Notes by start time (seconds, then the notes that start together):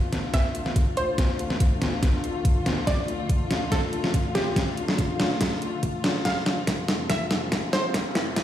Already playing: D2 D3 A3 F4 F5
0.13 snare, closed hi-hat
0.34 E5, kick, snare, closed hi-hat
0.55 closed hi-hat
0.66 snare
0.76 kick, closed hi-hat
0.97 C5, closed hi-hat
1.18 kick, snare, closed hi-hat
1.39 closed hi-hat
1.50 snare
1.60 kick, closed hi-hat
1.82 snare, closed hi-hat
2.03 kick, snare, closed hi-hat
2.24 closed hi-hat
2.45 kick, closed hi-hat
2.66 snare, closed hi-hat
2.87 D5, kick, snare, closed hi-hat
3.08 closed hi-hat
3.29 kick, closed hi-hat
3.51 snare, closed hi-hat
3.72 A4, kick, snare, closed hi-hat
3.93 closed hi-hat
4.04 snare
4.14 kick, closed hi-hat
4.35 G4, snare, closed hi-hat
4.56 kick, snare, closed hi-hat
4.77 closed hi-hat
4.88 snare
4.98 kick, closed hi-hat
5.20 snare, closed hi-hat
5.41 kick, snare, closed hi-hat
5.62 closed hi-hat
5.83 kick, closed hi-hat
6.04 snare, closed hi-hat
6.25 F2 C3 F5, kick, snare, closed hi-hat, riser
6.46 snare, closed hi-hat
6.67 kick, snare, closed hi-hat
6.88 snare, closed hi-hat
7.10 E5, kick, snare, closed hi-hat
7.31 snare, closed hi-hat
7.52 kick, snare, closed hi-hat
7.73 C5, snare, closed hi-hat
7.94 kick, snare, closed hi-hat
8.15 snare, closed hi-hat
8.36 kick, snare, closed hi-hat